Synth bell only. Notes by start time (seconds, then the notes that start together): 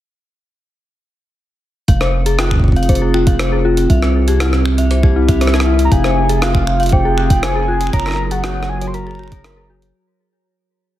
1.88 F5
2.01 C5
2.26 G#4
2.39 F4
2.76 F5
2.89 C5
3.02 G#4
3.14 F4
3.27 F5
3.40 C5
3.52 G#4
3.65 F4
3.90 E5
4.03 C5
4.28 G4
4.40 E4
4.78 E5
4.91 C5
5.03 G4
5.16 E4
5.29 E5
5.41 C5
5.54 G4
5.66 E4
5.92 F5
6.04 C5
6.29 G#4
6.42 F4
6.80 F5
6.93 C5
7.05 G#4
7.18 F4
7.30 F5
7.43 C5
7.55 G#4
7.68 F4
7.93 C#5
8.06 A#4
8.31 G#4
8.44 F#4
8.82 C#5
8.94 A#4
9.07 G#4
9.19 F#4
9.32 C#5
9.44 A#4
9.57 G#4
9.70 F#4